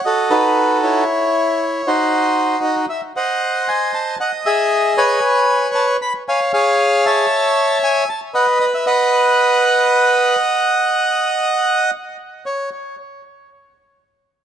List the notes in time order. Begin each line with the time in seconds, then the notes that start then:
0.05 F#4 A4 D#5
0.30 D#4 F#4 B4
0.83 E4 C#5
1.87 D#4 F#4 C5
2.64 D#5
2.89 E5
3.16 C5 D#5 F#5
3.68 G#5
3.94 A5
4.20 D#5 F#5
4.46 G#4 E5
4.97 B4 C#5 G#5
5.75 A5
6.02 B5
6.29 C#5 F5 G#5
6.53 G#4 C#5 F5
7.06 C#5 E5 A5
7.83 G#5
8.09 A5
8.34 B4 D#5 F#5
8.60 D#5
8.74 E5
8.86 B4 D#5 F#5
12.46 C#5